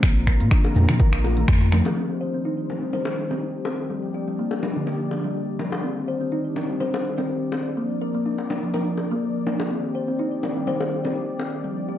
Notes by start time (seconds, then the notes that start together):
0.02 A#1 D3 F3 A#3 F4 A#5, finger snap, kick, closed hi-hat, shaker
0.16 shaker
0.27 A#4, finger snap, kick, shaker
0.40 A#2 A#3, closed hi-hat, high conga, shaker
0.51 D4, finger snap, kick, closed hi-hat, shaker
0.64 closed hi-hat, high bongo, shaker
0.75 F2, mid tom, low bongo, high conga, shaker
0.89 F3, finger snap, closed hi-hat, mid tom, low conga, shaker
0.99 A#4, kick, closed hi-hat, low bongo, low conga, shaker
1.13 A#1, finger snap, closed hi-hat, shaker
1.24 F4, high bongo, high conga, shaker
1.37 A3, closed hi-hat, low conga, shaker
1.48 F2, finger snap, kick, closed hi-hat, high conga, shaker
1.61 closed hi-hat, shaker
1.72 F3, finger snap, low bongo, high conga, shaker
1.85 closed hi-hat, high bongo, low bongo, low conga, shaker
1.97 D#3 C4 D4 G4 C5
2.21 C5
2.34 C4
2.45 D#4
2.70 low bongo
2.82 G3
2.93 C5, low bongo
3.05 high bongo
3.31 C4, low bongo
3.65 C4, high bongo
3.90 F3 G3 A#3 D5
4.14 G4
4.28 G3
4.39 A#3
4.51 high bongo
4.63 low bongo
4.76 D3
4.87 G4, low bongo
5.11 high bongo
5.24 G3
5.59 G3, low bongo
5.72 high bongo, low bongo
5.83 D#3 C4 D5
6.08 C5
6.21 C4
6.32 D#4
6.56 low bongo
6.69 G3
6.80 C5, low bongo
6.94 high bongo
7.18 C4, low bongo
7.52 C4, high bongo
7.77 F3 A#3 A#4
8.01 A#4
8.14 A#3
8.26 D4
8.38 high bongo
8.50 low bongo
8.63 F3
8.74 A#4, low bongo
8.98 high bongo
9.11 A#3
9.47 A#3, low bongo
9.60 high bongo, low bongo
9.71 D#3 C4 G4
9.95 C5
10.08 C4
10.19 D#4
10.43 low bongo
10.56 G3
10.67 C5, low bongo
10.81 high bongo
11.05 C4, low bongo
11.39 C4, high bongo
11.64 F3 G3 A#3
11.89 G4